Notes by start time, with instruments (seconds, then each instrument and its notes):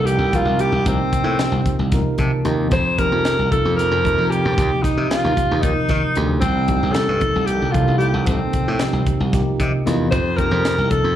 Already playing: slap bass C2, tine electric piano C3 F3 A#3 D#4 A#4
0.05 alto saxophone G4, closed hi-hat
0.18 slap bass C2
0.33 tine electric piano C3 F3 A#3 D#4 A#4, alto saxophone F4, kick, closed hi-hat
0.45 slap bass C2
0.59 alto saxophone G4, closed hi-hat
0.72 slap bass C2
0.86 slap bass C2, tine electric piano C3 F3 A#3 D#4 A#4, alto saxophone C4, kick, closed hi-hat
1.13 muted slap bass stroke, kick, closed hi-hat
1.24 slap bass A2
1.39 tine electric piano C3 F3 A#3 D#4 G4, snare, closed hi-hat
1.52 slap bass C2
1.66 kick, closed hi-hat
1.79 slap bass C2
1.92 tine electric piano C3 F3 A#3 D#4 A#4, kick, snare, closed hi-hat
2.05 muted slap bass stroke
2.18 slap bass C3, tine electric piano A5, kick, closed hi-hat
2.32 muted slap bass stroke
2.45 slap bass D#2, tine electric piano C3 F3 A#3 D#4 G4, closed hi-hat
2.71 slap bass F2, alto saxophone C5, kick, closed hi-hat
2.98 tine electric piano C3 F3 A#3 D#4 G4, alto saxophone A#4, kick, closed hi-hat
3.12 slap bass F2
3.25 snare, closed hi-hat
3.39 slap bass C2
3.51 tine electric piano C3 F3 A#3 D#4 F4, alto saxophone A4, muted slap bass stroke, kick, closed hi-hat
3.65 slap bass F2
3.76 alto saxophone A#4, snare, closed hi-hat
3.91 slap bass F2
4.05 tine electric piano C3 F3 A#3 D#4 A#4, kick, closed hi-hat
4.18 slap bass F2
4.30 alto saxophone G4, closed hi-hat
4.45 slap bass F2
4.57 slap bass D#2, tine electric piano C3 F3 A#3 D#4 G4, kick, closed hi-hat
4.83 alto saxophone D#4, muted slap bass stroke, kick, snare, closed hi-hat
4.97 slap bass C3
5.09 tine electric piano C3 F3 A#3 D#4 G4, alto saxophone F4, snare, closed hi-hat
5.24 slap bass D#2
5.37 kick, closed hi-hat
5.51 slap bass D#2
5.61 tine electric piano C3 F3 A#3 D#4 A#4, alto saxophone D#4, kick, closed hi-hat
5.77 muted slap bass stroke
5.89 slap bass D#3, kick, snare, closed hi-hat
6.03 muted slap bass stroke
6.15 slap bass D2, tine electric piano C3 F3 A#3 D#4 G4, closed hi-hat
6.40 slap bass C2, alto saxophone C4, kick, closed hi-hat
6.68 tine electric piano C3 F3 A#3 D#4 G4, kick, closed hi-hat
6.83 slap bass C2
6.92 alto saxophone A4, snare, closed hi-hat
7.09 slap bass G2
7.21 tine electric piano C3 F3 A#3 D#4 A4, muted slap bass stroke, kick, closed hi-hat
7.35 slap bass C2
7.46 alto saxophone G4, closed hi-hat
7.62 slap bass C2
7.71 tine electric piano C3 F3 A#3 D#4, alto saxophone F4, kick, closed hi-hat
7.75 tine electric piano A4
7.88 slap bass C2
7.98 alto saxophone G4, closed hi-hat
8.14 slap bass C2
8.26 slap bass C2, tine electric piano C3 F3 A#3 D#4 A4, alto saxophone C4, kick, closed hi-hat
8.53 muted slap bass stroke, kick, closed hi-hat
8.68 slap bass A2
8.79 tine electric piano C3 F3 A#3 D#4 G4, snare, closed hi-hat
8.93 slap bass C2
9.06 muted slap bass stroke, kick, closed hi-hat
9.20 slap bass C2
9.33 tine electric piano C3 F3 A#3 D#4 G4, kick, snare, closed hi-hat
9.46 muted slap bass stroke
9.60 slap bass C3, tine electric piano D#5, kick, closed hi-hat
9.73 muted slap bass stroke
9.86 slap bass E2, tine electric piano C3 F3 A#3 D#4 F4 D#5, snare, closed hi-hat
10.11 slap bass F2, alto saxophone C5, kick, closed hi-hat
10.37 tine electric piano C3 F3 A#3 D#4 G4, alto saxophone A#4, kick, closed hi-hat
10.51 slap bass F2
10.65 snare, closed hi-hat
10.78 slap bass C2
10.90 tine electric piano C3 F3 A#3 D#4 A4, alto saxophone A4, muted slap bass stroke, kick, closed hi-hat
11.04 slap bass F2